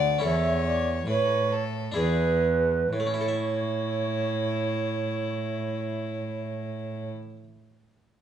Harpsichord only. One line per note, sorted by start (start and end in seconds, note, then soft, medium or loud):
0.00 0.20 D2 medium
0.00 0.19 D4 soft
0.00 0.20 F#4 soft
0.00 0.20 A4 soft
0.19 1.90 C#4 soft
0.19 1.90 E4 soft
0.19 1.91 A4 soft
0.23 1.03 E2 soft
1.07 1.92 A2 soft
1.92 2.88 D4 soft
1.92 2.89 E4 soft
1.92 2.90 G#4 soft
1.97 2.89 E2 soft
2.93 7.08 A2 soft
3.00 7.16 A3 soft
3.07 7.22 C#4 soft
3.14 7.30 E4 soft
3.21 7.37 A4 soft
3.28 7.44 E5 soft